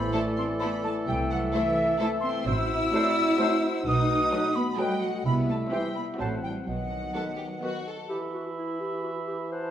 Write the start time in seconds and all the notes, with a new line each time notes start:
Already playing: E3 A3 E4 A4 C5 B5
0.13 A3 E4 A4 C5 D5 A5
0.37 C4 C6
0.60 A3 B3 E4 A4 C5 B5
0.83 A3 A5
1.07 C2 G3 E5 G5
1.31 F#3 F#5
1.53 E3 A3 E4 A4 C5 E5
1.99 A3 E4 A4 C5 A5
2.22 C4 C6
2.46 A1 C4 E4 F#4 C5 E6
2.93 F#3 A3 F#4 A4 C5 D5
3.38 F#3 A3 F#4 A4 C5
3.86 B1 A3 D#4 B4 D#6
4.32 F#3 F#4 A4 B4
4.55 B3 B5
4.78 F#3 G3 F#4 A4 B4 D#5 G5
5.02 F#3 F#5
5.25 C2 G3 B3 E4 E5 B5
5.49 A3 A5
5.71 E3 G3 C4 E4 G4 C5 G5
5.95 B3 B5
6.18 A1 F#3 A3 C4 F#4 C5 F#5 A5
6.42 E3 G3 G5
6.67 B1 D#3 F#3 B3 D#5 F#5
7.14 D#3 B3 F#4 A4 B4
7.38 G4
7.62 D#3 B3 F#4 B4
7.87 A4
8.09 E3 G4 E5 B5
8.34 F#4
8.57 E4
8.80 G4
9.04 F#4
9.27 G4
9.51 C5 F#5 A5